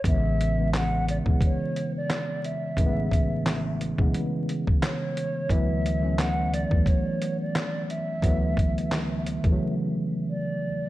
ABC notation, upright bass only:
X:1
M:4/4
L:1/16
Q:"Swing 16ths" 1/4=88
K:A
V:1 name="Upright bass" clef=bass
A,,,6- A,,, B,,, z8 | A,,,6- A,,, B,,, z8 | D,,6- D,, E,, z8 | D,,6- D,, E,, z8 |]